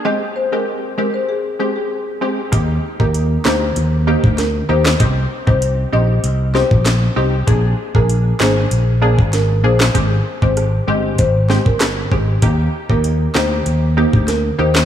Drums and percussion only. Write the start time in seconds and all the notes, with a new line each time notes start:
2.53 kick, closed hi-hat
3.00 kick
3.14 closed hi-hat
3.45 snare, clap
3.76 closed hi-hat
4.24 kick
4.38 snare, closed hi-hat
4.86 snare, clap
5.00 kick, closed hi-hat
5.47 kick
5.62 closed hi-hat
6.24 closed hi-hat
6.55 snare
6.71 kick
6.86 snare, clap, closed hi-hat
7.48 kick, closed hi-hat
7.95 kick
8.09 closed hi-hat
8.40 snare, clap
8.71 closed hi-hat
9.19 kick
9.33 snare, closed hi-hat
9.80 snare, clap
9.95 kick, closed hi-hat
10.42 kick
10.57 cross-stick, closed hi-hat
11.18 kick, closed hi-hat
11.50 snare
11.66 kick
11.81 cross-stick, snare, clap, closed hi-hat
12.12 kick
12.42 kick, closed hi-hat
12.90 kick
13.04 closed hi-hat
13.35 snare, clap
13.66 closed hi-hat
14.13 kick
14.28 snare, closed hi-hat
14.75 snare, clap